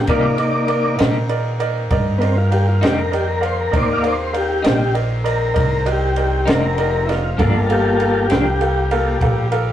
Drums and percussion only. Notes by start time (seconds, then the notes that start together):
0.07 kick, ride
0.38 ride
0.68 ride
0.99 snare, ride
1.29 ride
1.60 ride
1.91 kick, ride
2.22 ride
2.52 ride
2.83 snare, ride
3.13 ride
3.43 ride
3.73 kick, ride
4.04 ride
4.34 ride
4.64 snare, ride
4.95 ride
5.26 ride
5.56 kick, ride
5.86 ride
6.16 ride
6.47 snare, ride
6.78 ride
7.09 snare, ride
7.39 kick, ride
7.70 ride
8.00 ride
8.30 snare, ride
8.61 ride
8.91 ride
9.21 kick, ride
9.52 ride